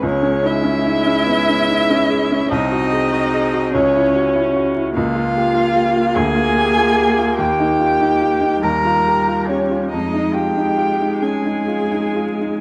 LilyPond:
<<
  \new Staff \with { instrumentName = "Violin" } { \time 6/8 \key cis \minor \tempo 4. = 49 cis''8 e''2~ e''8 | dis''4. cis''4 r8 | \key f \minor f''4. aes''4. | g''4. bes''4 des''8 |
ees''8 g''4 aes''4. | }
  \new Staff \with { instrumentName = "Cello" } { \time 6/8 \key cis \minor cis'8 e'2~ e'8 | dis'4. cis'4 r8 | \key f \minor f'4. aes'4. | g'4. bes'4 des'8 |
ees'8 g'4 aes'4. | }
  \new Staff \with { instrumentName = "Grand piano" } { \time 6/8 \key cis \minor cis,16 cis'16 dis'16 cis'16 dis'16 cis'16 b16 cis'16 dis'16 cis'16 gis'16 cis'16 | bis,,16 fis'16 gis'16 fis'16 gis'16 fis'16 cis,16 e'16 fis'16 e'16 fis'16 e'16 | \key f \minor des,16 f'16 g'16 f'16 g'16 f'16 d,16 f'16 g'16 f'16 g'16 f'16 | ees,16 ees'16 f'16 ees'16 f'16 ees'16 ees,16 f'16 g'16 f'16 g'16 f'16 |
f,16 ees'16 f'16 ees'16 f'16 ees'16 des'16 ees'16 f'16 ees'16 f'16 ees'16 | }
  \new Staff \with { instrumentName = "Viola" } { \time 6/8 \key cis \minor gis2. | bis4. cis'4. | \key f \minor bes2.~ | bes4. g4. |
aes2. | }
>>